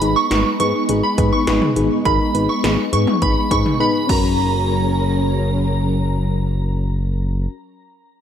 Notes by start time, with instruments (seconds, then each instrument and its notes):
Already playing: string machine G#3 B3 D#4
0.01 analog synth bass G#1, fm electric piano D#4 G#4 B4, closed hi-hat
0.16 synth bell C#6
0.31 analog synth bass G#1, fm electric piano D#4 G#4 B4, snare, closed hi-hat
0.60 analog synth bass G#2, fm electric piano D#4 G#4 B4, synth bell C#6, closed hi-hat
0.89 analog synth bass G#1, fm electric piano D#4 G#4 B4, closed hi-hat
1.03 synth bell B5
1.18 analog synth bass G#2, fm electric piano D#4 G#4 B4, kick, closed hi-hat
1.33 synth bell C#6
1.47 analog synth bass G#1, fm electric piano D#4 G#4 B4, snare, closed hi-hat
1.62 mid tom
1.76 analog synth bass G#1, fm electric piano D#4 G#4 B4, closed hi-hat
2.05 analog synth bass G#1, fm electric piano D#4 G#4 A#4, synth bell B5, kick, closed hi-hat
2.35 analog synth bass G#1, fm electric piano D#4 G#4 B4, closed hi-hat
2.49 synth bell C#6
2.64 analog synth bass G#1, fm electric piano D#4 G#4 B4, snare, closed hi-hat
2.93 analog synth bass G#2, fm electric piano D#4 G#4 B4, synth bell C#6, closed hi-hat
3.07 mid tom
3.22 analog synth bass G#1, fm electric piano D#4 G#4 B4, synth bell B5, kick, closed hi-hat
3.51 analog synth bass G#2, fm electric piano D#4 G#4 B4, synth bell C#6, kick, closed hi-hat
3.66 mid tom
3.80 fm electric piano D#4 G#4 B4, synth bell B5
4.07 analog synth bass F#1, string machine F#3 C#4 G#4 A#4, fm electric piano C#4 F#4, synth bell A#5, kick, crash
4.11 fm electric piano A#4